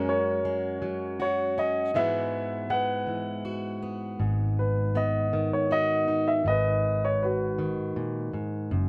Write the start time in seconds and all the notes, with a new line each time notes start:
Already playing: F#2 F#3 G#3 C#4 F#4
0.09 A#4 C#5
0.45 G#3
0.82 F#3
1.20 F#4 C#5
1.58 C#4 D#5
1.94 G#2 E3 G#3 B3 F#4 B4 E5
2.70 G#3 B4 F#5
3.07 E3
3.45 F#4
3.83 B3
4.20 G#1 G#2
4.59 B4
4.95 B3 D#5
5.33 D#3
5.53 C#5
5.71 F#4 D#5
6.08 D#4
6.28 E5
6.45 G#1 G#2 D#5
6.50 B4
7.05 C#5
7.23 F#4 B4
7.58 D#3
7.96 A#2
8.33 G#2
8.71 F#1 F#2